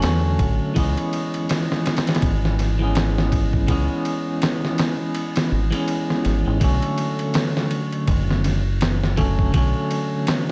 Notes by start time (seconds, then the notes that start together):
Already playing: D3 F#3 A3 C#4
0.02 E2, snare, ride
0.39 A1, kick, ride
0.74 C#2 E3 G#3 B3, kick, ride
0.78 C#4
0.97 ride
1.13 ride
1.34 ride
1.49 snare, ride
1.72 snare
1.86 snare, ride
1.97 snare, ride
2.07 snare, ride
2.15 snare, ride
2.22 G#1, kick, ride
2.45 snare
2.59 snare, ride
2.79 E3 G#3 B3
2.83 C#4
2.95 snare, ride
3.18 snare
3.32 kick, ride
3.53 kick
3.67 C#2 E3 G#3 B3 C#4, kick, ride
4.05 ride
4.42 snare, ride
4.65 snare
4.78 snare, ride
5.15 ride
5.36 snare, ride
5.52 G#1
5.71 E3 G#3 B3, ride
5.75 C#4
5.88 ride
6.10 snare
6.25 G#1, snare, ride
6.47 G#1
6.60 B1 D3 F#3 A3, kick, ride
6.64 C#4
6.82 ride
6.98 ride
7.19 ride
7.34 snare, ride
7.57 snare
7.71 ride
7.92 ride
8.07 F#1, kick, ride
8.30 snare
8.44 snare, ride
8.81 snare, ride
9.04 snare
9.17 D3 F#3 A3 C#4, kick, ride
9.39 kick
9.52 B1 D3 F#3 A3, kick, ride
9.56 C#4
9.91 ride
10.27 snare, ride